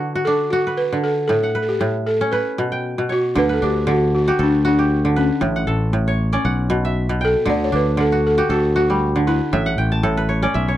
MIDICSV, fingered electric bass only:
0, 0, Header, 1, 2, 480
1, 0, Start_track
1, 0, Key_signature, 2, "major"
1, 0, Tempo, 514139
1, 1217, Time_signature, 4, 2, 24, 8
1, 10058, End_track
2, 0, Start_track
2, 0, Title_t, "Fingered electric bass"
2, 0, Program_c, 0, 33
2, 3141, Note_on_c, 0, 38, 76
2, 3351, Note_off_c, 0, 38, 0
2, 3387, Note_on_c, 0, 38, 80
2, 4015, Note_off_c, 0, 38, 0
2, 4100, Note_on_c, 0, 38, 93
2, 4940, Note_off_c, 0, 38, 0
2, 5061, Note_on_c, 0, 33, 77
2, 5271, Note_off_c, 0, 33, 0
2, 5302, Note_on_c, 0, 33, 76
2, 5931, Note_off_c, 0, 33, 0
2, 6019, Note_on_c, 0, 35, 91
2, 6858, Note_off_c, 0, 35, 0
2, 6975, Note_on_c, 0, 38, 83
2, 7187, Note_off_c, 0, 38, 0
2, 7220, Note_on_c, 0, 38, 78
2, 7849, Note_off_c, 0, 38, 0
2, 7930, Note_on_c, 0, 38, 90
2, 8772, Note_off_c, 0, 38, 0
2, 8897, Note_on_c, 0, 33, 89
2, 9107, Note_off_c, 0, 33, 0
2, 9131, Note_on_c, 0, 33, 74
2, 9762, Note_off_c, 0, 33, 0
2, 9852, Note_on_c, 0, 35, 90
2, 10058, Note_off_c, 0, 35, 0
2, 10058, End_track
0, 0, End_of_file